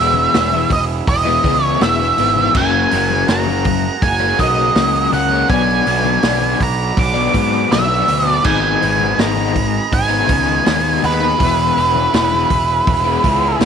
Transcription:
Already playing: picked electric bass E1, overdriven electric guitar E3, transistor combo organ G#3 E4 B4, lead electric guitar E5
0.00 overdriven electric guitar G#3 B3 E4
0.14 high conga
0.34 picked electric bass E1, overdriven electric guitar E3 G#3 B3 E4, snare, open hi-hat
0.51 overdriven electric guitar B3 E4, high conga
0.55 overdriven electric guitar G#3
0.70 picked electric bass E1, lead electric guitar D#5, muted overdriven electric guitar stroke, kick, open hi-hat, low conga
1.07 picked electric bass E1, lead electric guitar D#5, kick, open hi-hat
1.25 overdriven electric guitar G#3 B3 E4
1.44 picked electric bass C#2, overdriven electric guitar E3 G#3 B3 E4, kick, open hi-hat
1.64 lead electric guitar C#5
1.81 picked electric bass E1, overdriven electric guitar E3 G#3 B3 E4, lead electric guitar E5, snare, open hi-hat
2.00 overdriven electric guitar G#3 B3 E4, high conga
2.18 picked electric bass G#1, overdriven electric guitar E3 G#3 B3 E4, open hi-hat, low conga
2.36 overdriven electric guitar G#3 B3 E4, low conga
2.54 picked electric bass F#1, overdriven electric guitar F#2 C#3 F#3 A#3 C#4, transistor combo organ F#4 A#4, lead electric guitar G#5, kick, crash
2.91 picked electric bass F#1, overdriven electric guitar C#3 F#3 A#3 C#4, open hi-hat
3.11 high conga
3.27 picked electric bass F#1, overdriven electric guitar F#2 C#3 F#3 A#3 C#4, lead electric guitar A#5, snare, open hi-hat
3.46 overdriven electric guitar F#3 A#3 C#4, high conga
3.64 muted overdriven electric guitar stroke, kick, open hi-hat, low conga
4.02 picked electric bass F#1, lead electric guitar G#5, kick, open hi-hat, high conga
4.20 overdriven electric guitar F#3 A#3 C#4
4.39 picked electric bass B1, overdriven electric guitar C#3 F#3 A#3 C#4, lead electric guitar D#5, kick, open hi-hat
4.75 picked electric bass C#2, overdriven electric guitar F#2 C#3 F#3 A#3 C#4, snare, open hi-hat
4.94 overdriven electric guitar F#3 A#3 C#4
5.12 picked electric bass C#2, overdriven electric guitar C#3 F#3 A#3 C#4, lead electric guitar F#5, open hi-hat, low conga
5.30 overdriven electric guitar F#3 A#3 C#4
5.49 picked electric bass B1, overdriven electric guitar B2 F#3 B3 D4, transistor combo organ F#3 D4 B4, lead electric guitar G#5, kick, open hi-hat
5.86 picked electric bass B1, overdriven electric guitar B2 F#3 B3 D4, open hi-hat
6.05 high conga
6.23 picked electric bass B1, overdriven electric guitar B2 F#3 B3 D4, snare, open hi-hat
6.41 overdriven electric guitar F#3 B3 D4, high conga
6.59 picked electric bass B1, lead electric guitar A#5, muted overdriven electric guitar stroke, kick, open hi-hat, low conga
6.97 picked electric bass B1, lead electric guitar D6, kick, open hi-hat, high conga
7.14 overdriven electric guitar F#3 B3 D4
7.33 picked electric bass G#2, overdriven electric guitar B2 F#3 B3 D4, kick, open hi-hat
7.68 picked electric bass B1, overdriven electric guitar B2 F#3 B3 D4, snare, open hi-hat
7.72 lead electric guitar E5
7.87 overdriven electric guitar F#3 B3 D4
8.06 picked electric bass D2, overdriven electric guitar B2 F#3 B3 D4, open hi-hat, low conga
8.25 overdriven electric guitar F#3 B3 D4, lead electric guitar D5
8.43 picked electric bass G#1, overdriven electric guitar G#2 D#3 G#3 B3 D#4, transistor combo organ G#3 D#4, lead electric guitar G#5, kick, crash
8.81 picked electric bass G#1, overdriven electric guitar D#3 G#3 B3 D#4, open hi-hat
9.00 high conga
9.17 picked electric bass G#1, overdriven electric guitar G#2 D#3 G#3 B3 D#4, lead electric guitar A#5, snare, open hi-hat
9.36 overdriven electric guitar G#3 B3 D#4, high conga
9.54 muted overdriven electric guitar stroke, kick, open hi-hat, low conga
9.92 picked electric bass G#1, lead electric guitar G#5, kick, open hi-hat, high conga
10.09 overdriven electric guitar G#3 B3 D#4
10.27 picked electric bass C#2, overdriven electric guitar D#3 G#3 B3 D#4, kick, open hi-hat
10.65 picked electric bass D#2, overdriven electric guitar G#2 D#3 G#3 B3 D#4, snare, open hi-hat
10.83 overdriven electric guitar G#3 B3 D#4
11.02 picked electric bass D#2, overdriven electric guitar D#3 G#3 B3 D#4, lead electric guitar B4, open hi-hat, low conga
11.20 overdriven electric guitar G#3 B3 D#4
11.38 picked electric bass E1, overdriven electric guitar E3 G#3 B3 E4, transistor combo organ E4 B4, kick, open hi-hat
11.76 picked electric bass E1, overdriven electric guitar E3 G#3 B3 E4, open hi-hat
11.95 high conga
12.12 picked electric bass E1, overdriven electric guitar E3 G#3 B3 E4, snare, open hi-hat
12.31 overdriven electric guitar G#3 B3 E4, high conga
12.50 picked electric bass E1, muted overdriven electric guitar stroke, kick, open hi-hat, low conga
12.87 picked electric bass E1, kick, open hi-hat, high conga
13.04 overdriven electric guitar G#3 B3 E4
13.23 picked electric bass C#2, overdriven electric guitar E3 G#3 B3 E4, kick, open hi-hat, low conga
13.59 picked electric bass E1, overdriven electric guitar E3 G#3 B3, snare, open hi-hat

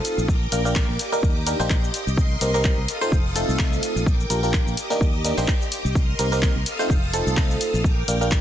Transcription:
Already playing: fm electric piano A3 C4 D#4 F4 A4, string machine A4 F5 D#6
0.05 open hi-hat, cabasa
0.18 fingered electric bass A#1, cabasa
0.28 string machine A#4 G5 D6, kick, cabasa
0.52 fingered electric bass A#1, fm electric piano A#3 D4 F4 G4 A#4, open hi-hat, cabasa
0.65 fm electric piano A#3 D4 F4 G4 A#4, cabasa
0.76 kick, clap, cabasa
0.89 fingered electric bass A#1
0.99 string machine G4 D#5, open hi-hat, cabasa
1.12 fm electric piano A#3 D4 D#4 G4 A#4, cabasa
1.23 fingered electric bass D#2, kick, cabasa
1.47 fm electric piano A#3 D4 D#4 G4 A#4, open hi-hat, cabasa
1.60 fingered electric bass A#1, fm electric piano A#3 D4 D#4 G4 C5, cabasa
1.70 kick, clap, cabasa
1.84 cabasa
1.94 open hi-hat, cabasa
2.07 fingered electric bass C2, cabasa
2.17 string machine A#4 C6, kick, cabasa
2.41 fingered electric bass C2, fm electric piano A#3 C4 D#4 G4 A#4, open hi-hat, cabasa
2.54 fm electric piano A#3 C4 D#4 G4 A#4, cabasa
2.65 kick, clap, cabasa
2.78 fingered electric bass C2
2.88 string machine A4 F5 D#6, open hi-hat, cabasa
3.01 fm electric piano A3 C4 D#4 F4 C5, cabasa
3.12 fingered electric bass F1, kick, cabasa
3.36 fm electric piano A3 C4 D#4 F4 A4, open hi-hat, cabasa
3.49 fingered electric bass C2, cabasa
3.59 kick, clap, cabasa
3.73 cabasa
3.83 open hi-hat, cabasa
3.96 fingered electric bass A#1, cabasa
4.06 string machine A#4 G5 D6, kick, cabasa
4.20 cabasa
4.30 fingered electric bass A#1, fm electric piano A#3 D4 F4 G4 A#4, open hi-hat, cabasa
4.43 fm electric piano A#3 D4 F4 G4 A#4, cabasa
4.54 kick, clap, cabasa
4.67 fingered electric bass A#1, cabasa
4.77 string machine G4 D#5, open hi-hat, cabasa
4.90 fm electric piano A#3 D4 D#4 G4 A#4, cabasa
5.01 fingered electric bass D#2, kick, cabasa
5.25 fm electric piano A#3 D4 D#4 G4 A#4, open hi-hat, cabasa
5.38 fingered electric bass A#1, fm electric piano A#3 D4 D#4 G4 C5, cabasa
5.48 kick, clap, cabasa
5.62 cabasa
5.72 open hi-hat, cabasa
5.85 fingered electric bass C2, cabasa
5.95 string machine A#4 D#5 C6, kick, cabasa
6.19 fingered electric bass C2, fm electric piano A#3 C4 D#4 G4 A#4, open hi-hat, cabasa
6.32 fm electric piano A#3 C4 D#4 G4 A#4, cabasa
6.42 kick, clap, cabasa
6.56 fingered electric bass C2
6.66 string machine A4 F5 D#6, open hi-hat, cabasa
6.79 fm electric piano A3 C4 D#4 F4 C5, cabasa
6.90 fingered electric bass F1, kick, cabasa
7.13 fm electric piano A3 C4 D#4 F4 A4, open hi-hat, cabasa
7.27 fingered electric bass C2, cabasa
7.37 kick, clap, cabasa
7.51 cabasa
7.61 open hi-hat, cabasa
7.74 fingered electric bass A#1, cabasa
7.84 string machine A#4 G5 D6, kick, cabasa
8.08 fingered electric bass A#1, fm electric piano A#3 D4 F4 G4 A#4, open hi-hat, cabasa
8.21 fm electric piano A#3 D4 F4 G4 A#4, cabasa
8.32 kick, clap, cabasa

